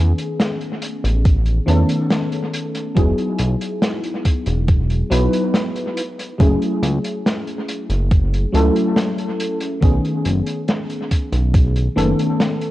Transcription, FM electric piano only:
Already playing: D#3 A3 B3 C#4 G#4
1.66 D#3 A3 B3 C#4 A4
2.95 F#3 B3 D#4 E4 G#4
5.10 F#3 B3 D#4 E4 B4
6.38 F#3 A3 C#4 E4 G#4
8.52 F#3 A3 C#4 E4 A4
9.81 D#3 A3 B3 C#4 G#4
11.96 D#3 A3 B3 C#4 A4

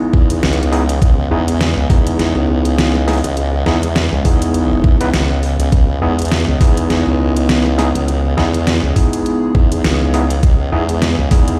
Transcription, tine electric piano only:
Already playing: B3 D#4 E4 G#4
0.72 B3 D#4 E4 G#4
1.31 B3 D#4 E4 G#4
1.90 B3 D#4 E4 G#4
3.07 B3 D#4 E4 G#4
3.66 B3 D#4 E4 G#4
4.25 B3 D#4 E4 G#4
5.00 B3 D#4 E4 B4
6.02 B3 D#4 E4 G#4
6.61 B3 D#4 E4 G#4
7.78 B3 D#4 E4 G#4
8.37 B3 D#4 E4 G#4
8.96 B3 D#4 E4 G#4
10.14 B3 D#4 E4 G#4
10.72 B3 D#4 E4 G#4
11.31 B3 D#4 E4 G#4

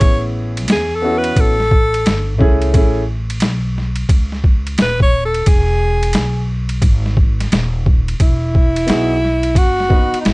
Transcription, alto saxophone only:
Already playing: C#5
0.72 G#4
0.95 A4
1.18 B4
1.40 A4
4.82 B4
5.02 C#5
5.25 A4
5.48 G#4
8.21 E4
9.58 F#4
10.20 D#4
10.26 E4

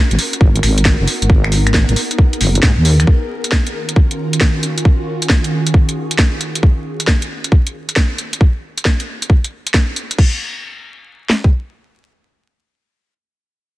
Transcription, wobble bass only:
0.11 G#1
0.41 G#1
0.63 G#1
1.00 F#1
1.22 G#1
1.89 G#1
2.41 F#1
2.63 G#2
2.78 D#2

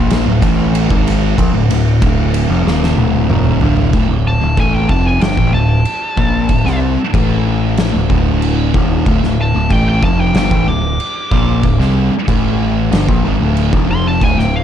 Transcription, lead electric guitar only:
4.27 A5
4.60 G#5
4.75 G5
4.90 A5
5.07 G#5
5.22 G5
5.54 A5
9.41 A5
9.73 G5
9.89 G5
10.04 A5
10.20 G5
10.37 G5
10.68 D6
13.91 C6
14.07 A5
14.24 G#5
14.39 G5
14.56 F5

